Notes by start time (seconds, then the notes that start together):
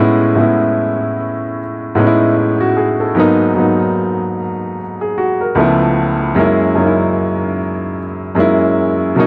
Already playing: A2 G#3 B3
0.00 C#4 E4
0.35 A2 G#3 B3 C#4
0.40 E4
1.95 A2 G#3 B3 C#4
2.00 D#4
2.07 E4
2.38 E4
2.60 F#4
2.77 G#4
3.00 A4
3.15 G#2 F#3 A#3 B3
3.20 D#4
3.55 G#2 F#3 A#3 B3
3.60 D#4
5.01 G#4
5.17 F#4
5.41 A#4
5.55 C#2 F3 A3 B3
5.60 E4
6.35 F#2 G#3 A#3 C#4
6.40 E4
6.75 F#2 G#3 A#3 C#4
6.80 D#4
6.86 E4
8.35 F#2 G#3 A#3 C#4
8.40 E4
9.15 B2 F#3 A#3 C#4
9.20 D#4